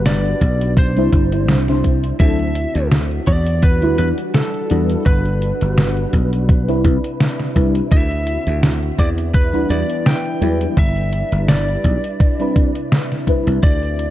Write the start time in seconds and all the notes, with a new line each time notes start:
Already playing: G1 G3 D4 F#4 B4
0.06 D5, snare, closed hi-hat, tambourine
0.25 closed hi-hat, tambourine
0.41 B1, kick, closed hi-hat
0.61 closed hi-hat, tambourine
0.77 C3 E4 C5, kick, closed hi-hat, tambourine
0.97 C2 G3 C4 D4 E4 C5, closed hi-hat, tambourine
1.13 G1, kick, closed hi-hat
1.32 G3 C4 D4 E4 C5, closed hi-hat, tambourine
1.49 C2, snare, closed hi-hat, tambourine
1.68 G3 C4 D4 E4 C5, snare, closed hi-hat, tambourine
1.84 kick, closed hi-hat
2.04 closed hi-hat, tambourine
2.19 D2 D3 F#3 C4 D4 E4 F#4 A4 E5, kick, closed hi-hat, tambourine
2.39 closed hi-hat, tambourine
2.55 closed hi-hat
2.75 D2, closed hi-hat, tambourine
2.92 snare, closed hi-hat, tambourine
3.11 closed hi-hat, tambourine
3.27 E2 E3 G3 D4 D5, kick, closed hi-hat
3.46 closed hi-hat, tambourine
3.62 B4, kick, closed hi-hat, tambourine
3.82 D2 G3 D4 E4 F#4 B4, closed hi-hat, tambourine
3.98 E2 B4, closed hi-hat
4.18 closed hi-hat, tambourine
4.34 A4, snare, closed hi-hat, tambourine
4.54 closed hi-hat, tambourine
4.70 E2 G3 D4 E4 F#4 B4, closed hi-hat
4.89 closed hi-hat, tambourine
5.06 G1 G3 F#4 B4, kick, closed hi-hat, tambourine
5.25 closed hi-hat, tambourine
5.42 closed hi-hat
5.61 G1, closed hi-hat, tambourine
5.78 snare, closed hi-hat, tambourine
5.97 closed hi-hat, tambourine
6.13 B1, kick, closed hi-hat
6.33 closed hi-hat, tambourine
6.48 C3 E4 B4, kick, closed hi-hat, tambourine
6.68 C2 G3 C4 D4 E4 B4, closed hi-hat, tambourine
6.84 C2, kick, closed hi-hat
7.04 closed hi-hat, tambourine
7.20 snare, closed hi-hat, tambourine
7.39 snare, closed hi-hat, tambourine
7.55 C2 G3 C4 D4 E4 B4, kick, closed hi-hat
7.75 closed hi-hat, tambourine
7.91 D2 D3 C4 F#4 E5, kick, closed hi-hat, tambourine
8.11 closed hi-hat, tambourine
8.27 closed hi-hat
8.47 D2, closed hi-hat, tambourine
8.63 snare, closed hi-hat, tambourine
8.83 closed hi-hat, tambourine
8.99 E2 E3 B3 D4 E4 D5, kick, closed hi-hat
9.18 closed hi-hat, tambourine
9.34 B4, kick, closed hi-hat, tambourine
9.53 D2 G3 D4 E4 F#4 B4, closed hi-hat, tambourine
9.70 E2 D5, closed hi-hat
9.90 closed hi-hat, tambourine
10.06 G5, snare, closed hi-hat, tambourine
10.25 closed hi-hat, tambourine
10.41 E2 F#3 G3 D4 E4 B4, closed hi-hat
10.61 closed hi-hat, tambourine
10.77 G1 G3 D4 B4 E5, kick, closed hi-hat, tambourine
10.96 closed hi-hat, tambourine
11.13 closed hi-hat
11.32 G1, closed hi-hat, tambourine
11.49 D5, snare, closed hi-hat, tambourine
11.68 closed hi-hat, tambourine
11.84 B1, kick, closed hi-hat
12.04 closed hi-hat, tambourine
12.20 C3 E4 B4, kick, closed hi-hat, tambourine
12.39 G3 C4 D4 E4 B4, closed hi-hat, tambourine
12.56 kick, closed hi-hat
12.75 closed hi-hat, tambourine
12.92 snare, closed hi-hat, tambourine
13.12 snare, closed hi-hat, tambourine
13.27 G3 C4 D4 E4 B4, kick, closed hi-hat
13.47 C2, closed hi-hat, tambourine
13.63 D2 D3 C4 F#4 D5, kick, closed hi-hat, tambourine
13.83 closed hi-hat, tambourine
13.99 closed hi-hat